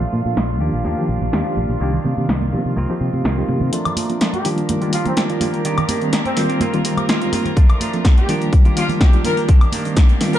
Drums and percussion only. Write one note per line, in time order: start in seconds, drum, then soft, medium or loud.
0.01 low conga medium
0.01 shaker soft
0.13 high conga medium
0.26 shaker medium
0.36 snare loud
0.36 shaker medium
0.49 high conga medium
0.49 shaker soft
0.73 shaker medium
0.85 high conga medium
0.85 shaker medium
0.97 shaker soft
1.22 high conga medium
1.22 low conga medium
1.22 shaker medium
1.33 snare loud
1.33 shaker medium
1.45 shaker soft
1.58 high conga medium
1.70 shaker medium
1.81 shaker medium
1.93 low conga medium
1.93 shaker soft
2.04 high conga medium
2.04 low conga medium
2.17 shaker medium
2.29 snare loud
2.29 shaker medium
2.41 high conga medium
2.41 shaker soft
2.65 shaker medium
2.76 high conga medium
2.76 shaker medium
2.89 shaker soft
3.13 high conga medium
3.13 shaker medium
3.25 snare loud
3.37 shaker soft
3.49 high conga medium
3.60 low conga medium
3.60 shaker medium
3.73 closed hi-hat medium
3.73 shaker medium
3.85 closed hi-hat soft
3.85 low conga medium
3.85 high woodblock medium
3.85 shaker soft
3.97 open hi-hat loud
3.97 high conga medium
4.09 closed hi-hat soft
4.09 shaker medium
4.21 snare loud
4.21 closed hi-hat medium
4.33 closed hi-hat soft
4.33 high conga medium
4.33 shaker soft
4.45 open hi-hat loud
4.57 closed hi-hat soft
4.57 shaker medium
4.69 closed hi-hat medium
4.69 high conga loud
4.69 shaker medium
4.82 closed hi-hat soft
4.82 shaker soft
4.93 open hi-hat loud
5.05 closed hi-hat soft
5.05 high conga medium
5.05 low conga medium
5.05 shaker medium
5.17 snare loud
5.17 closed hi-hat medium
5.17 shaker medium
5.29 closed hi-hat soft
5.29 shaker soft
5.41 open hi-hat loud
5.41 high conga medium
5.54 closed hi-hat soft
5.54 shaker medium
5.65 closed hi-hat medium
5.65 shaker medium
5.78 closed hi-hat soft
5.78 low conga medium
5.78 high woodblock medium
5.78 shaker soft
5.89 open hi-hat loud
5.89 high conga loud
6.01 closed hi-hat soft
6.01 shaker medium
6.13 snare loud
6.13 closed hi-hat medium
6.13 shaker medium
6.25 closed hi-hat soft
6.25 high conga medium
6.25 shaker soft
6.37 snare medium
6.37 open hi-hat loud
6.50 closed hi-hat soft
6.50 shaker medium
6.61 closed hi-hat medium
6.61 high conga loud
6.61 shaker medium
6.74 closed hi-hat soft
6.74 shaker soft
6.85 open hi-hat loud
6.97 closed hi-hat soft
6.97 high conga medium
6.97 high woodblock medium
6.97 shaker medium
7.09 snare loud
7.09 closed hi-hat medium
7.21 closed hi-hat soft
7.21 shaker soft
7.33 open hi-hat loud
7.33 high conga loud
7.45 closed hi-hat soft
7.45 low conga medium
7.45 shaker medium
7.57 kick loud
7.57 closed hi-hat medium
7.69 closed hi-hat soft
7.69 low conga medium
7.69 high woodblock medium
7.69 shaker soft
7.81 open hi-hat loud
7.81 high conga medium
7.93 closed hi-hat soft
7.93 shaker medium
8.05 kick loud
8.05 snare loud
8.05 closed hi-hat medium
8.17 closed hi-hat soft
8.17 high conga medium
8.17 shaker soft
8.29 open hi-hat loud
8.41 closed hi-hat soft
8.41 shaker medium
8.53 kick loud
8.53 closed hi-hat medium
8.53 high conga medium
8.53 shaker medium
8.65 closed hi-hat soft
8.65 shaker soft
8.77 open hi-hat loud
8.88 closed hi-hat soft
8.88 high conga medium
8.88 low conga medium
8.88 shaker medium
9.01 kick loud
9.01 snare loud
9.01 closed hi-hat medium
9.01 shaker medium
9.13 closed hi-hat soft
9.13 shaker soft
9.24 open hi-hat loud
9.24 high conga medium
9.37 closed hi-hat soft
9.37 shaker medium
9.49 kick loud
9.49 closed hi-hat medium
9.49 shaker medium
9.61 closed hi-hat soft
9.61 low conga medium
9.61 high woodblock medium
9.61 shaker soft
9.72 open hi-hat loud
9.72 high conga loud
9.85 closed hi-hat soft
9.85 shaker medium
9.96 kick loud
9.96 snare loud
9.96 closed hi-hat medium
9.96 shaker medium
10.09 closed hi-hat soft
10.09 high conga medium
10.09 shaker soft
10.21 snare medium
10.21 open hi-hat loud
10.33 closed hi-hat soft
10.33 shaker medium